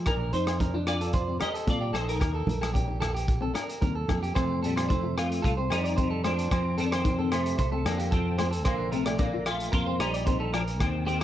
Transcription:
0.06 fingered electric bass A#1, clean electric guitar D4 A#4, kick, cross-stick, closed hi-hat, muted conga, low agogo
0.33 fingered electric bass F2, nylon-string guitar F3, clean electric guitar D#4 C5, closed hi-hat, muted conga
0.47 cross-stick, closed hi-hat, low agogo
0.60 nylon-string guitar D4, clean electric guitar A#4, kick, closed hi-hat, high conga
0.74 clean electric guitar D4, nylon-string guitar F4
0.87 clean electric guitar F4 D5, cross-stick, closed hi-hat, low agogo
1.01 clean electric guitar A4, closed hi-hat
1.13 clean electric guitar C5, kick, closed hi-hat, muted conga
1.28 nylon-string guitar C4
1.40 nylon-string guitar D4, clean electric guitar G4 A#4 D#5, cross-stick, closed hi-hat, high conga, low agogo
1.54 clean electric guitar A4, closed hi-hat
1.67 fingered electric bass A#2, nylon-string guitar C4, clean electric guitar F4 D5, kick, closed hi-hat, high conga
1.81 clean electric guitar G4
1.92 fingered electric bass A#1, nylon-string guitar A#3, clean electric guitar D#4 A4 C5, cross-stick, closed hi-hat, muted conga, low agogo
2.08 clean electric guitar D#4 A#4, closed hi-hat
2.20 fingered electric bass D#2, clean electric guitar A#4, kick, cross-stick, closed hi-hat, muted conga, low agogo
2.35 clean electric guitar A4
2.47 fingered electric bass A#1, nylon-string guitar A#3, closed hi-hat, muted conga, high conga, low conga
2.61 clean electric guitar A4, cross-stick, closed hi-hat, low agogo
2.74 clean electric guitar G4, muted nylon-string guitar stroke, kick, closed hi-hat
2.88 nylon-string guitar D#4
3.00 clean electric guitar A4, cross-stick, closed hi-hat, low conga, low agogo
3.15 clean electric guitar G4, closed hi-hat
3.28 kick, closed hi-hat, muted conga
3.41 nylon-string guitar C4, clean electric guitar A4
3.54 nylon-string guitar D4, clean electric guitar A#4, cross-stick, closed hi-hat, low agogo
3.69 closed hi-hat
3.81 fingered electric bass D#2, nylon-string guitar C4, clean electric guitar A#4, kick, closed hi-hat, high conga
3.95 clean electric guitar A4
4.08 fingered electric bass F2, nylon-string guitar A#3, kick, cross-stick, closed hi-hat, muted conga, high conga, low agogo
4.23 clean electric guitar G4, closed hi-hat
4.35 fingered electric bass F2, clean electric guitar C3 A3 C5, kick, cross-stick, closed hi-hat, low agogo
4.63 clean electric guitar A#2 G3 A4, nylon-string guitar C4, closed hi-hat
4.76 clean electric guitar C5, cross-stick, closed hi-hat, low agogo
4.89 clean electric guitar C3 A3 C5, nylon-string guitar D#4, kick, closed hi-hat
5.03 nylon-string guitar F4
5.17 clean electric guitar A3 F4, cross-stick, closed hi-hat, low agogo
5.32 closed hi-hat
5.42 fingered electric bass C2, clean electric guitar A3 F4 A4, kick, closed hi-hat
5.57 nylon-string guitar C4, clean electric guitar C5
5.70 fingered electric bass F2, clean electric guitar G3 D#4, nylon-string guitar D4, cross-stick, closed hi-hat, low agogo
5.84 clean electric guitar D5, closed hi-hat
5.97 nylon-string guitar C4, clean electric guitar C5, kick, closed hi-hat
6.10 clean electric guitar A4
6.24 clean electric guitar F3 D4 C5, nylon-string guitar A3, cross-stick, closed hi-hat, low agogo
6.39 closed hi-hat
6.51 fingered electric bass F2, clean electric guitar F3 C4 C5, kick, cross-stick, closed hi-hat, low agogo
6.78 clean electric guitar D#3 C4 A4, nylon-string guitar C4, closed hi-hat
6.86 clean electric guitar D4
6.91 clean electric guitar D#3 C4 C5, cross-stick, closed hi-hat, low agogo
7.04 nylon-string guitar D#4, kick, closed hi-hat
7.19 nylon-string guitar C4, clean electric guitar A4
7.32 clean electric guitar C3 A3 C5, cross-stick, closed hi-hat, low agogo
7.46 closed hi-hat
7.58 fingered electric bass C2, clean electric guitar C5, kick, closed hi-hat
7.72 nylon-string guitar C4, clean electric guitar A4
7.85 fingered electric bass F2, clean electric guitar D3 A#3, nylon-string guitar D4, cross-stick, closed hi-hat, low agogo
7.98 clean electric guitar G4, closed hi-hat
8.11 clean electric guitar F3 C4 A4, kick, closed hi-hat
8.38 nylon-string guitar A3, clean electric guitar C5, cross-stick, closed hi-hat, low agogo
8.51 clean electric guitar A4, closed hi-hat
8.65 fingered electric bass A#1, clean electric guitar D3 A#3 C5, kick, cross-stick, closed hi-hat, low agogo
8.92 clean electric guitar C3 A3 A#4, nylon-string guitar C4, closed hi-hat
9.05 clean electric guitar D5, cross-stick, closed hi-hat, low agogo
9.19 clean electric guitar D3 A#3 D5, nylon-string guitar D4, kick, closed hi-hat
9.34 nylon-string guitar F4
9.46 clean electric guitar A3 F4, cross-stick, closed hi-hat, low agogo
9.60 closed hi-hat
9.72 fingered electric bass F2, clean electric guitar A#3 F4 A#4, kick, closed hi-hat
9.86 nylon-string guitar C4, clean electric guitar C5
9.99 fingered electric bass A#1, clean electric guitar G3 D#4, nylon-string guitar D4, cross-stick, closed hi-hat, low agogo
10.14 clean electric guitar D5, closed hi-hat
10.26 nylon-string guitar C4, clean electric guitar C5, kick, closed hi-hat
10.40 clean electric guitar A4
10.53 clean electric guitar F3 D4 A#4, nylon-string guitar A#3, cross-stick, closed hi-hat, low agogo
10.68 closed hi-hat
10.80 fingered electric bass D#2, clean electric guitar D#3 C4, muted clean electric guitar stroke, kick, cross-stick, closed hi-hat, low agogo
11.06 clean electric guitar D#3 C4 G4, nylon-string guitar A#3, closed hi-hat
11.20 clean electric guitar A#4

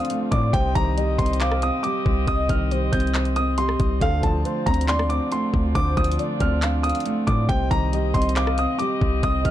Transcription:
Already playing: grand piano D3 F3 A3 C4 D4 D#6, french horn section C4 D4 F4, soft synth lead F5
0.05 closed hi-hat
0.10 grand piano A3, closed hi-hat
0.32 808-style bass A2, soft synth lead D5, grand piano D6, kick, closed hi-hat
0.53 808-style bass C2, grand piano C3 G5, french horn section G4 D#5, soft synth lead C5, kick, closed hi-hat
0.75 808-style bass C2, grand piano D#3 A#5, kick, closed hi-hat
0.97 grand piano G3, soft synth lead D#5, closed hi-hat
1.18 808-style bass C2, grand piano C4 C6, kick, closed hi-hat
1.26 closed hi-hat
1.33 closed hi-hat
1.40 grand piano C5 D6, soft synth lead F5, clap, closed hi-hat
1.51 cross-stick
1.62 grand piano C4 D#6, closed hi-hat
1.83 grand piano G3 D6, closed hi-hat
2.06 808-style bass C2, kick
2.27 808-style bass C2, grand piano C3 D#6, soft synth lead D#5, kick, closed hi-hat
2.49 808-style bass C2, grand piano D#3 F6, kick, closed hi-hat
2.71 grand piano G3, soft synth lead C5, closed hi-hat
2.92 808-style bass C2, grand piano C4 G6, kick, closed hi-hat
3.00 closed hi-hat
3.07 closed hi-hat
3.14 grand piano C5, clap, closed hi-hat
3.25 closed hi-hat
3.36 grand piano C4 D#6, closed hi-hat
3.58 grand piano G3 C6, closed hi-hat
3.69 cross-stick
3.80 808-style bass C2, kick, closed hi-hat
4.01 808-style bass D2, grand piano D3 F5, french horn section D4 F4, soft synth lead A4, kick, closed hi-hat
4.23 808-style bass D2, grand piano F3 A5, kick, closed hi-hat
4.45 grand piano A3, soft synth lead C5, closed hi-hat
4.66 808-style bass D2, grand piano C4 A#5, kick, closed hi-hat
4.74 closed hi-hat
4.81 closed hi-hat
4.88 808-style bass D#2, grand piano D4 C6, soft synth lead D5, clap, closed hi-hat
4.99 cross-stick
5.05 808-style bass D2
5.09 grand piano C4 D6, closed hi-hat
5.32 grand piano A3 C6, closed hi-hat
5.54 808-style bass D2, kick
5.75 808-style bass D2, grand piano D3 D6, soft synth lead C5, kick, closed hi-hat
5.97 808-style bass D2, grand piano F3 D#6, kick, closed hi-hat
6.04 closed hi-hat
6.12 closed hi-hat
6.19 grand piano A3, soft synth lead D5, closed hi-hat
6.40 808-style bass D2, grand piano C4 F6, kick, closed hi-hat
6.62 grand piano D4, soft synth lead F5, clap, closed hi-hat
6.83 grand piano C4 D#6, closed hi-hat
6.89 closed hi-hat
6.95 closed hi-hat
7.00 closed hi-hat
7.06 grand piano A3, closed hi-hat
7.27 808-style bass A2, soft synth lead D5, grand piano D6, kick, closed hi-hat
7.49 808-style bass C2, grand piano C3 G5, french horn section C4 G4 D#5, soft synth lead C5, kick, closed hi-hat
7.71 808-style bass C2, grand piano D#3 A#5, kick, closed hi-hat
7.93 grand piano G3, soft synth lead D#5, closed hi-hat
8.14 808-style bass C2, grand piano C4 C6, kick, closed hi-hat
8.22 closed hi-hat
8.29 closed hi-hat
8.36 grand piano C5 D6, soft synth lead F5, clap, closed hi-hat
8.47 cross-stick
8.58 grand piano C4 D#6, closed hi-hat
8.79 grand piano G3 D6, closed hi-hat
9.01 808-style bass C2, kick
9.23 808-style bass C2, grand piano C3 D#6, soft synth lead D#5, kick, closed hi-hat
9.45 808-style bass C2, grand piano D#3 F6, kick, closed hi-hat

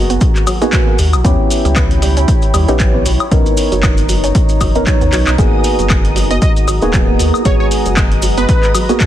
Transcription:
Already playing: sub bass F#1, synth stab A#3 B3 F#4 G#4, ambient pad F#4 A#5
0.10 synth arpeggio sound B3, closed hi-hat, maracas
0.21 kick, closed hi-hat, maracas
0.36 clap, closed hi-hat, maracas
0.47 synth arpeggio sound F#3, open hi-hat, high woodblock, maracas
0.61 synth stab A#3 B3 F#4 G#4, synth arpeggio sound D#4, closed hi-hat, maracas
0.72 synth arpeggio sound F#3, kick, clap, closed hi-hat, maracas
0.87 synth arpeggio sound A#3
0.99 sub bass D#2, synth arpeggio sound G3, ambient pad E4, open hi-hat, maracas
1.13 sub bass A#1, high woodblock, maracas
1.18 ambient pad C#5 G5
1.24 sub bass D#2, synth stab B3 C#4 E4 G4, ambient pad B5, kick, closed hi-hat, maracas
1.50 open hi-hat, maracas
1.65 sub bass C#2, synth arpeggio sound G3, closed hi-hat, maracas
1.76 synth arpeggio sound B3, kick, clap, closed hi-hat, high woodblock, maracas
1.91 closed hi-hat
2.02 synth arpeggio sound G3, open hi-hat, maracas
2.17 synth arpeggio sound C#4, closed hi-hat, maracas
2.28 kick, closed hi-hat, maracas
2.42 closed hi-hat, maracas
2.54 sub bass D#2, synth arpeggio sound G3, open hi-hat, high woodblock, maracas
2.68 sub bass A#1, synth stab B3 C#4 E4 G4, synth arpeggio sound D#4, closed hi-hat, maracas
2.80 synth arpeggio sound G3, kick, clap, closed hi-hat, maracas
2.94 synth arpeggio sound B3
3.06 sub bass B1, synth arpeggio sound F#3, ambient pad D#4, open hi-hat, maracas
3.20 high woodblock, maracas
3.31 sub bass B1, synth stab B3 C#4 D#4 A#4, kick, closed hi-hat, maracas
3.46 closed hi-hat, maracas
3.57 ambient pad A#5, open hi-hat, maracas
3.72 sub bass F#1, synth arpeggio sound F#3, closed hi-hat, maracas
3.83 synth arpeggio sound B3, kick, clap, closed hi-hat, high woodblock, maracas
3.97 closed hi-hat, maracas
4.09 synth arpeggio sound F#3, open hi-hat, maracas
4.24 synth arpeggio sound C#4, closed hi-hat, maracas
4.35 kick, closed hi-hat, maracas
4.49 closed hi-hat, maracas
4.61 sub bass F#1, synth arpeggio sound F#3, kick, open hi-hat, high woodblock, maracas
4.75 sub bass F#1, synth stab B3 C#4 D#4 A#4, synth arpeggio sound D#4, closed hi-hat, maracas
4.87 synth arpeggio sound F#3, synth stab C#4 C#5, kick, clap, closed hi-hat, maracas
5.01 sub bass D#2, synth arpeggio sound B3, closed hi-hat, maracas
5.13 sub bass B1, synth arpeggio sound F#3, clap, open hi-hat, maracas
5.27 sub bass B1, clap, closed hi-hat, high woodblock, maracas
5.38 sub bass G#1, synth stab A#3 B3 F#4 G#4, ambient pad F#4, analog synth pad D#5 D#6, kick, closed hi-hat, maracas
5.64 open hi-hat, maracas
5.79 sub bass F#1, synth arpeggio sound F#3, closed hi-hat, maracas
5.90 synth arpeggio sound A#3, kick, clap, closed hi-hat, high woodblock, maracas
6.05 closed hi-hat
6.16 synth arpeggio sound F#3, open hi-hat, maracas
6.31 synth arpeggio sound B3, digital synth lead D#5, closed hi-hat, maracas
6.42 digital synth lead D#5, kick, closed hi-hat, maracas
6.56 closed hi-hat, maracas
6.68 sub bass G#1, synth arpeggio sound F#3, open hi-hat, high woodblock, maracas
6.82 sub bass D#1, synth stab A#3 B3 F#4 G#4, synth arpeggio sound D#4, closed hi-hat, maracas
6.93 synth arpeggio sound F#3, kick, clap, closed hi-hat, maracas
7.08 synth arpeggio sound A#3
7.19 sub bass D#2, synth arpeggio sound F#3, open hi-hat, maracas
7.34 high woodblock, maracas
7.45 sub bass G#1, synth stab G#3 B3 F#4 G#4, digital synth lead C#5, kick, closed hi-hat, maracas
7.60 digital synth lead C#5
7.71 open hi-hat, maracas
7.85 sub bass F#1, synth arpeggio sound F#3, closed hi-hat, maracas
7.97 synth arpeggio sound A#3, kick, clap, closed hi-hat, high woodblock, maracas
8.12 closed hi-hat
8.22 synth arpeggio sound F#3, open hi-hat, maracas
8.37 synth arpeggio sound B3, digital synth lead B4, closed hi-hat, maracas
8.49 kick, closed hi-hat, maracas
8.63 clap, closed hi-hat, maracas
8.75 synth arpeggio sound F#3, open hi-hat, high woodblock, maracas
8.89 synth stab A#3 B3 F#4 G#4, synth arpeggio sound D#4, closed hi-hat, maracas
9.00 synth arpeggio sound F#3, kick, clap, closed hi-hat, maracas

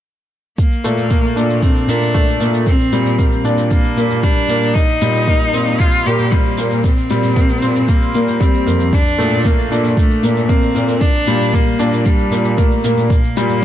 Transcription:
0.58 cello A#3, kick, shaker
0.71 shaker
0.84 cello section A#2, upright piano A3, shaker
0.98 shaker
1.10 upright piano A#3, kick, shaker
1.24 shaker
1.36 cello section A#2, upright piano D4, shaker
1.50 shaker
1.63 cello C4, kick, shaker
1.76 shaker
1.88 cello section A#2, upright piano A#3, cello D4, shaker
2.02 shaker
2.14 upright piano A3, kick, shaker
2.28 shaker
2.40 cello section A#2, upright piano A#3, shaker
2.54 shaker
2.66 cello C4, kick, shaker
2.80 shaker
2.92 cello section A#2, upright piano G3, shaker
3.06 shaker
3.18 upright piano A#3, kick, shaker
3.32 shaker
3.44 cello section A#2, upright piano D4, shaker
3.58 shaker
3.71 cello A#3, kick, shaker
3.84 shaker
3.96 cello section A#2, upright piano A#3, shaker
4.10 shaker
4.23 upright piano G3, cello D4, kick, shaker
4.37 shaker
4.49 cello section A#2, upright piano A#3, shaker
4.63 shaker
4.74 cello D#4, kick, shaker
4.89 shaker
5.01 cello section A#2, upright piano G3, shaker
5.15 shaker
5.28 upright piano A#3, kick, shaker
5.41 shaker
5.54 cello section A#2, upright piano C4, shaker
5.66 shaker
5.79 cello F4, kick, shaker
5.92 shaker
6.05 cello section A#2, upright piano A#3, cello G4, shaker
6.18 shaker
6.32 upright piano G3, cello A#3, kick, shaker
6.45 shaker
6.58 cello section A#2, upright piano A#3, shaker
6.71 shaker
6.84 cello C4, kick, shaker
6.97 shaker
7.10 cello section A#2, upright piano G3, shaker
7.23 shaker
7.36 upright piano A#3, kick, shaker
7.49 shaker
7.62 cello section A#2, upright piano C4, shaker
7.75 shaker
7.88 cello A#3, kick, shaker
8.01 shaker
8.14 cello section A#2, upright piano A#3, shaker
8.28 shaker
8.40 upright piano G3, cello C4, kick, shaker
8.54 shaker
8.66 cello section F2, upright piano A#3, shaker
8.80 shaker
8.93 cello D4, kick, shaker
9.07 shaker
9.18 cello section A#2, upright piano A3, shaker
9.33 shaker
9.44 upright piano A#3, cello A#3, kick, shaker
9.59 shaker
9.71 cello section A#2, upright piano D4, shaker
9.85 shaker
9.97 cello A3, kick, shaker
10.11 shaker
10.23 cello section A#2, upright piano A#3, shaker
10.37 shaker
10.49 upright piano A#3, cello C4, kick, shaker
10.62 shaker
10.75 cello section A#2, upright piano A#3, shaker
10.89 shaker
11.01 cello D4, kick, shaker
11.14 shaker
11.27 cello section A#2, upright piano G3, shaker
11.40 shaker
11.53 upright piano A#3, cello A#3, kick, shaker
11.67 shaker
11.79 cello section A#2, upright piano D4, shaker
11.93 shaker
12.05 cello G3, kick, shaker
12.19 shaker
12.32 cello section A#2, upright piano A#3, shaker
12.45 shaker
12.58 cello A3, upright piano A#3, kick, shaker
12.71 shaker
12.84 cello section A#2, upright piano A#3, shaker
12.97 shaker
13.09 cello A#3, kick, shaker
13.24 shaker
13.36 cello section A#2, upright piano G3, shaker
13.50 shaker

